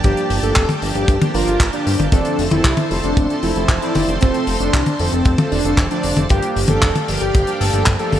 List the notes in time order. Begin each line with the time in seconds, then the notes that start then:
Already playing: G4 D5 G5 A5
0.04 G1 F3 A#3 D4 G4, kick, closed hi-hat
0.17 closed hi-hat
0.30 G1, open hi-hat
0.43 G1 F3 A#3 D4 G4 A4, closed hi-hat
0.56 F1, kick, clap, closed hi-hat
0.69 closed hi-hat, high tom
0.82 G1 F3 A#3 D4 G4, open hi-hat
0.95 G1 G4, closed hi-hat
1.08 G1, kick, closed hi-hat
1.21 F3 A#3 D4 G4, closed hi-hat, high tom
1.34 G1 F3 A#3 D4 F4 A#4, open hi-hat
1.47 G1, closed hi-hat
1.60 G1, kick, clap, closed hi-hat
1.73 F3 A#3 D4 G4, closed hi-hat
1.87 G2, open hi-hat
2.00 G1, closed hi-hat, high tom
2.12 F1 F3 A3 C4 D4 A4 C5 C6, kick, closed hi-hat
2.25 closed hi-hat
2.39 F1, open hi-hat
2.51 F1 F3 A3 C4 E4 A4, closed hi-hat, high tom
2.64 C2, kick, clap, closed hi-hat
2.77 closed hi-hat, high tom
2.91 F1 F3 A3 C4 A4, open hi-hat
3.04 F1 D4, closed hi-hat
3.17 F1, kick, closed hi-hat
3.30 F3 A3 C4 A4, closed hi-hat
3.43 F1 E4, open hi-hat
3.56 F1 F3 A3 C4 A4, closed hi-hat
3.69 F1, kick, clap, closed hi-hat
3.82 F3 A3 C4 E4 D5, closed hi-hat
3.95 F1, open hi-hat, high tom
4.08 F1, closed hi-hat
4.21 F1 F3 A3 C4 A4, kick, closed hi-hat
4.34 closed hi-hat
4.47 F1, open hi-hat
4.60 F1 F3 A3 C4 D4 A4, closed hi-hat
4.73 C2, kick, clap, closed hi-hat
4.86 closed hi-hat, high tom
4.99 F1 F3 A3 C4 A4, open hi-hat
5.13 F1 C4, closed hi-hat
5.25 F1, kick, closed hi-hat
5.38 F3 A3 C4 A4, closed hi-hat, high tom
5.52 F1 D4, open hi-hat
5.65 F1 F3 A3 C4 A4, closed hi-hat
5.78 F1, kick, clap, closed hi-hat
5.91 F3 A3 C4 D4 D5, closed hi-hat
6.03 F1, open hi-hat
6.17 F1, closed hi-hat, high tom
6.29 G1 F3 A#3 D4 G4 D5 F5 G5, kick, closed hi-hat
6.43 closed hi-hat
6.56 G1, open hi-hat
6.68 G1 F3 A#3 D4 G4 A4, closed hi-hat, high tom
6.82 F1, kick, clap, closed hi-hat
6.95 closed hi-hat, high tom
7.08 G1 F3 A#3 D4 G4, open hi-hat
7.21 G1 G4, closed hi-hat
7.35 G1, kick, closed hi-hat
7.47 F3 A#3 D4 G4, closed hi-hat
7.60 G1 A4, open hi-hat
7.73 G1 F3 A#3 D4 G4, closed hi-hat
7.86 G1, kick, clap, closed hi-hat
7.99 F3 A#3 D4 G4 A4, closed hi-hat
8.12 G1, open hi-hat, high tom